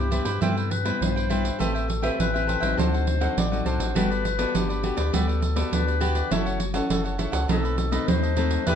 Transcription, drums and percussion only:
0.12 pandeiro
0.25 pandeiro
0.42 pandeiro
0.57 pandeiro
0.71 pandeiro
0.86 pandeiro
1.02 pandeiro
1.17 pandeiro
1.31 pandeiro
1.45 pandeiro
1.60 pandeiro
1.76 pandeiro
1.90 pandeiro
2.04 pandeiro
2.20 pandeiro
2.36 pandeiro
2.49 pandeiro
2.63 pandeiro
2.79 pandeiro
2.94 pandeiro
3.07 pandeiro
3.22 pandeiro
3.38 pandeiro
3.53 pandeiro
3.66 pandeiro
3.80 pandeiro
3.96 pandeiro
4.12 pandeiro
4.25 pandeiro
4.39 pandeiro
4.55 pandeiro
4.70 pandeiro
4.84 pandeiro
4.98 pandeiro
5.14 pandeiro
5.29 pandeiro
5.42 pandeiro
5.57 pandeiro
5.73 pandeiro
5.88 pandeiro
6.01 pandeiro
6.15 pandeiro
6.32 pandeiro
6.47 pandeiro
6.60 pandeiro
6.74 pandeiro
6.90 pandeiro
7.06 pandeiro
7.19 pandeiro
7.33 pandeiro
7.49 pandeiro
7.65 pandeiro
7.78 pandeiro
7.92 pandeiro
8.08 pandeiro
8.23 pandeiro
8.37 pandeiro
8.51 pandeiro
8.67 pandeiro

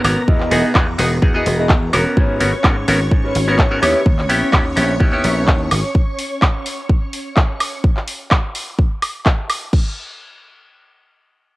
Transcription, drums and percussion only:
0.04 open hi-hat, high woodblock
0.28 kick
0.40 clap
0.51 open hi-hat
0.75 kick, clap, high woodblock
0.99 open hi-hat
1.22 kick
1.46 open hi-hat
1.69 kick, clap
1.93 open hi-hat, high woodblock
2.17 kick
2.40 open hi-hat
2.64 kick, clap, high woodblock
2.88 open hi-hat
3.11 kick
3.35 open hi-hat
3.59 kick, clap
3.83 open hi-hat, high woodblock
4.06 kick
4.19 clap
4.30 open hi-hat
4.53 kick, clap, high woodblock
4.77 open hi-hat
5.00 kick
5.24 open hi-hat
5.48 kick, clap
5.71 open hi-hat, high woodblock
5.95 kick
6.19 open hi-hat
6.42 kick, clap, high woodblock
6.66 open hi-hat
6.89 kick
7.13 open hi-hat
7.36 kick, clap
7.60 open hi-hat, high woodblock
7.84 kick
7.97 clap
8.08 open hi-hat
8.31 kick, clap, high woodblock
8.55 open hi-hat
8.79 kick
9.02 open hi-hat, high woodblock
9.26 kick, clap
9.50 open hi-hat, high woodblock
9.73 kick, crash

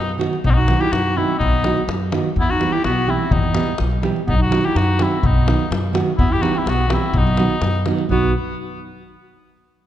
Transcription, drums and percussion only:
0.09 davul high
0.21 davul high
0.33 davul high
0.45 davul low
0.68 davul high
0.81 davul high
0.93 davul high
1.40 davul low
1.64 davul high
1.77 davul high
1.89 davul high
2.12 davul high
2.36 davul low
2.61 davul high
2.73 davul high
2.84 davul high
3.31 davul low
3.43 davul high
3.55 davul high
3.67 davul high
3.78 davul high
3.91 davul high
4.03 davul high
4.16 davul high
4.29 davul low
4.52 davul high
4.64 davul high
4.76 davul high
4.99 davul high
5.23 davul low
5.48 davul high
5.60 davul high
5.72 davul high
5.95 davul high
6.19 davul low
6.43 davul high
6.55 davul high
6.67 davul high
6.90 davul high
7.14 davul low
7.27 davul high
7.37 davul high
7.50 davul high
7.62 davul high
7.75 davul high
7.86 davul high
7.99 davul high
8.10 davul low

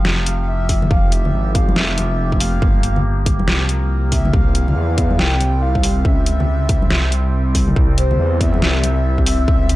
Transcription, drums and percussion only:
0.05 snare
0.26 closed hi-hat
0.69 kick, open hi-hat
0.82 high conga, low conga
0.91 kick
1.12 closed hi-hat
1.25 low conga
1.55 kick, closed hi-hat
1.69 high conga
1.76 snare
1.98 closed hi-hat, high conga
2.32 kick
2.40 open hi-hat
2.62 kick
2.83 closed hi-hat
2.96 low conga
3.26 kick, closed hi-hat
3.39 high conga
3.48 snare
3.69 closed hi-hat
4.12 kick, open hi-hat
4.25 high conga, low conga
4.33 kick
4.55 closed hi-hat
4.68 low conga
4.98 kick, closed hi-hat
5.11 high conga
5.19 snare
5.40 closed hi-hat, high conga
5.75 kick
5.83 open hi-hat
6.05 kick
6.26 closed hi-hat
6.40 low conga
6.69 kick, closed hi-hat
6.82 high conga
6.91 snare
7.12 closed hi-hat
7.55 kick, open hi-hat
7.68 high conga, low conga
7.76 kick
7.98 closed hi-hat
8.11 low conga
8.41 kick, closed hi-hat
8.54 high conga
8.62 snare
8.83 closed hi-hat, high conga
9.18 kick
9.26 open hi-hat
9.48 kick
9.69 closed hi-hat

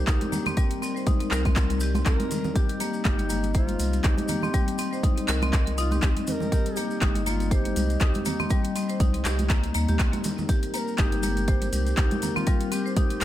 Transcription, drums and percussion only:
0.07 kick, clap, closed hi-hat, muted conga, maracas
0.21 closed hi-hat, high conga, maracas
0.32 muted conga, low conga, maracas
0.46 closed hi-hat, high conga, low conga, maracas
0.57 kick, closed hi-hat, muted conga, maracas
0.71 closed hi-hat, maracas
0.82 muted conga, maracas
0.97 maracas
1.07 kick, closed hi-hat, high conga, maracas
1.20 closed hi-hat, muted conga, maracas
1.31 clap, maracas
1.45 kick, closed hi-hat, muted conga, high conga, maracas
1.56 kick, clap, closed hi-hat, maracas
1.70 closed hi-hat, muted conga, maracas
1.80 maracas
1.94 closed hi-hat, high conga, maracas
2.06 kick, clap, closed hi-hat, muted conga, maracas
2.20 closed hi-hat, high conga, maracas
2.31 open hi-hat, muted conga, low conga, maracas
2.44 high conga, low conga, maracas
2.55 kick, closed hi-hat, muted conga, maracas
2.69 closed hi-hat, maracas
2.80 open hi-hat, muted conga, maracas
2.93 maracas
3.05 kick, clap, closed hi-hat, high conga, maracas
3.19 closed hi-hat, muted conga, maracas
3.30 open hi-hat, high conga, maracas
3.43 closed hi-hat, muted conga, maracas
3.54 kick, closed hi-hat, maracas
3.68 closed hi-hat, muted conga, high conga, maracas
3.80 open hi-hat, high conga, maracas
3.93 closed hi-hat, maracas
4.03 kick, clap, closed hi-hat, muted conga, maracas
4.18 closed hi-hat, high conga, maracas
4.28 open hi-hat, muted conga, low conga, maracas
4.42 high conga, low conga, maracas
4.54 kick, closed hi-hat, muted conga, maracas
4.68 closed hi-hat, maracas
4.78 open hi-hat, muted conga, maracas
4.93 maracas
5.03 kick, closed hi-hat, high conga, maracas
5.17 closed hi-hat, muted conga, maracas
5.28 clap, open hi-hat, maracas
5.42 closed hi-hat, muted conga, high conga, maracas
5.53 kick, clap, closed hi-hat, maracas
5.67 closed hi-hat, muted conga, maracas
5.78 open hi-hat, maracas
5.91 closed hi-hat, high conga, maracas
6.02 kick, clap, closed hi-hat, muted conga, maracas
6.17 closed hi-hat, high conga, maracas
6.27 open hi-hat, muted conga, low conga, maracas
6.40 high conga, low conga, maracas
6.52 kick, closed hi-hat, muted conga, maracas
6.66 closed hi-hat, maracas
6.76 open hi-hat, muted conga, maracas
6.91 maracas
7.02 kick, clap, closed hi-hat, high conga, maracas
7.15 closed hi-hat, muted conga, maracas
7.26 open hi-hat, high conga, maracas
7.40 closed hi-hat, muted conga, maracas
7.51 kick, closed hi-hat, maracas
7.65 closed hi-hat, muted conga, high conga, maracas
7.76 open hi-hat, high conga, maracas
7.90 closed hi-hat, maracas
8.00 kick, clap, closed hi-hat, muted conga, maracas
8.14 closed hi-hat, high conga, maracas
8.25 open hi-hat, muted conga, low conga, maracas
8.40 high conga, low conga, maracas
8.50 kick, closed hi-hat, muted conga, maracas
8.64 closed hi-hat, maracas
8.75 open hi-hat, muted conga, maracas
8.89 closed hi-hat, maracas
9.00 kick, closed hi-hat, high conga, maracas
9.14 closed hi-hat, muted conga, maracas
9.25 clap, open hi-hat, maracas
9.39 closed hi-hat, muted conga, high conga, maracas
9.50 kick, clap, closed hi-hat, maracas
9.64 closed hi-hat, muted conga, maracas
9.74 open hi-hat, maracas
9.88 closed hi-hat, high conga, maracas
9.99 kick, clap, closed hi-hat, muted conga, maracas
10.13 closed hi-hat, high conga, maracas
10.24 open hi-hat, muted conga, low conga, maracas
10.38 high conga, low conga, maracas
10.49 kick, closed hi-hat, muted conga, maracas
10.63 closed hi-hat, maracas
10.74 open hi-hat, muted conga, maracas
10.88 maracas
10.98 kick, clap, closed hi-hat, high conga, maracas
11.12 closed hi-hat, muted conga, maracas
11.23 open hi-hat, high conga, maracas
11.37 closed hi-hat, muted conga, maracas
11.48 kick, closed hi-hat, maracas
11.62 closed hi-hat, muted conga, high conga, maracas
11.73 open hi-hat, high conga, maracas
11.87 closed hi-hat, maracas
11.97 kick, clap, closed hi-hat, muted conga, maracas
12.11 closed hi-hat, high conga, maracas
12.22 open hi-hat, muted conga, low conga, maracas
12.36 high conga, low conga, maracas
12.47 kick, closed hi-hat, muted conga, maracas
12.61 closed hi-hat, maracas
12.72 open hi-hat, muted conga, maracas
12.87 maracas
12.96 kick, closed hi-hat, high conga, maracas
13.10 closed hi-hat, muted conga, maracas
13.21 clap, open hi-hat

